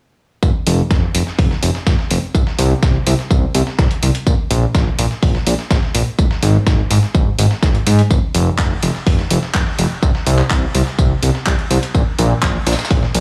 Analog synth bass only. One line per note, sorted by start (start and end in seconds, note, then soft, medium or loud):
0.43 0.50 F1 loud
0.67 0.82 F1 loud
0.91 1.06 F1 medium
1.15 1.22 F1 medium
1.39 1.54 F1 medium
1.63 1.70 F1 medium
1.87 1.94 F1 medium
2.11 2.18 F1 medium
2.35 2.42 C2 loud
2.59 2.74 C2 loud
2.83 2.98 C2 medium
3.07 3.14 C2 medium
3.31 3.46 C2 medium
3.55 3.62 C2 medium
3.79 3.86 C2 medium
4.03 4.10 C2 medium
4.27 4.34 A#1 loud
4.51 4.66 A#1 loud
4.75 4.90 A#1 medium
4.99 5.06 A#1 loud
5.23 5.38 A#1 medium
5.47 5.54 A#1 medium
5.71 5.78 A#1 loud
5.95 6.02 A#1 medium
6.19 6.26 G#1 loud
6.43 6.58 G#1 loud
6.67 6.82 G#1 medium
6.91 6.98 G#1 medium
7.15 7.30 G#1 medium
7.39 7.46 G#1 medium
7.63 7.78 G#1 medium
7.87 8.02 G#2 loud
8.11 8.18 F1 loud
8.35 8.50 F1 loud
8.59 8.74 F1 medium
8.83 8.90 F1 medium
9.07 9.22 F1 medium
9.31 9.38 F1 medium
9.55 9.62 F1 medium
9.79 9.86 F1 medium
10.03 10.10 C2 loud
10.27 10.42 C2 loud
10.51 10.66 C2 medium
10.75 10.82 C2 medium
10.99 11.14 C2 medium
11.23 11.30 C2 medium
11.47 11.54 C2 medium
11.71 11.78 C2 medium
11.95 12.02 A#1 loud
12.19 12.34 A#1 loud
12.43 12.58 A#1 medium
12.67 12.74 A#1 medium
12.91 13.06 A#1 medium
13.15 13.20 A#1 loud